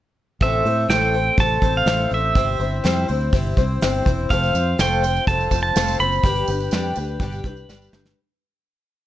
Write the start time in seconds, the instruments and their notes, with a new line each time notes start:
0.41 fingered electric bass A1, twelve-string acoustic guitar A2 E3 A3 C4 A4 C5, pedal steel guitar E5, kick, open hi-hat
0.65 fingered electric bass A2, twelve-string acoustic guitar A3 C4 A4 C5, open hi-hat
0.89 fingered electric bass A1, twelve-string acoustic guitar A2 E3 A3 C4 A4 C5, pedal steel guitar G5, snare, open hi-hat
1.14 twelve-string acoustic guitar C4 A4 C5, open hi-hat
1.18 twelve-string acoustic guitar A3
1.37 fingered electric bass A1, twelve-string acoustic guitar A3 C4 A4 C5, pedal steel guitar A5, kick, open hi-hat
1.62 fingered electric bass A1, twelve-string acoustic guitar A3 C4 A4 C5, kick, open hi-hat
1.77 pedal steel guitar F5
1.86 fingered electric bass A1, twelve-string acoustic guitar A2 E3 A3 C4 A4 C5, snare, open hi-hat
2.11 fingered electric bass A1, twelve-string acoustic guitar A3 C4 A4 C5, pedal steel guitar E5, open hi-hat
2.35 fingered electric bass G1, twelve-string acoustic guitar G3 C4 E4 C5, kick, open hi-hat
2.59 fingered electric bass G1, twelve-string acoustic guitar C4 E4 C5, open hi-hat
2.84 fingered electric bass F2, twelve-string acoustic guitar G3 C4 E4 C5, snare, open hi-hat
3.08 fingered electric bass D2, twelve-string acoustic guitar C4 E4 C5, open hi-hat
3.32 fingered electric bass G1, twelve-string acoustic guitar G3 C4 E4 C5, kick, open hi-hat
3.57 fingered electric bass C2, twelve-string acoustic guitar C4 E4 C5, kick, open hi-hat
3.81 fingered electric bass G1, twelve-string acoustic guitar G3 C4 E4 C5, snare, open hi-hat
4.05 fingered electric bass E1, twelve-string acoustic guitar C4 E4 C5, kick, open hi-hat
4.30 fingered electric bass F1, twelve-string acoustic guitar F3 A3 C4 F4 C5, pedal steel guitar F5, kick, open hi-hat, tambourine
4.43 tambourine
4.54 fingered electric bass F2, twelve-string acoustic guitar C4 F4 C5, open hi-hat, tambourine
4.78 fingered electric bass F1, twelve-string acoustic guitar F3 A3 C4 F4 C5, pedal steel guitar G5, snare, open hi-hat, tambourine
4.92 tambourine
5.03 twelve-string acoustic guitar C4 F4 C5, open hi-hat, tambourine
5.16 tambourine
5.27 fingered electric bass F1, twelve-string acoustic guitar A3 C4 F4 C5, pedal steel guitar A5, kick, open hi-hat, tambourine
5.41 tambourine
5.50 fingered electric bass F1, twelve-string acoustic guitar C4 F4 C5, kick, open hi-hat, tambourine
5.63 pedal steel guitar A5
5.75 fingered electric bass F1, twelve-string acoustic guitar F3 A3 C4 F4 C5, snare, open hi-hat, tambourine
5.88 tambourine
5.99 fingered electric bass F#1, twelve-string acoustic guitar C4 F4 C5, pedal steel guitar B5, open hi-hat, tambourine
6.12 tambourine
6.23 fingered electric bass G1, twelve-string acoustic guitar G3 D4 G4 B4, kick, open hi-hat, tambourine
6.36 tambourine
6.47 fingered electric bass G1, twelve-string acoustic guitar D4 G4 B4, open hi-hat, tambourine
6.60 tambourine
6.71 fingered electric bass F2, twelve-string acoustic guitar G3 D4 G4 B4, snare, open hi-hat, tambourine
6.84 tambourine
6.95 fingered electric bass D2, twelve-string acoustic guitar D4 G4 B4, open hi-hat, tambourine
7.08 tambourine
7.19 fingered electric bass G1, twelve-string acoustic guitar G3 D4 G4 B4, kick, open hi-hat, tambourine
7.32 tambourine
7.44 fingered electric bass C2, twelve-string acoustic guitar G4 B4, kick, open hi-hat
7.48 twelve-string acoustic guitar D4
7.57 tambourine
7.68 fingered electric bass G1, twelve-string acoustic guitar G3 D4 G4 B4, snare, tambourine
7.82 tambourine
7.93 fingered electric bass G1, twelve-string acoustic guitar D4 G4 B4, snare
8.05 snare, tambourine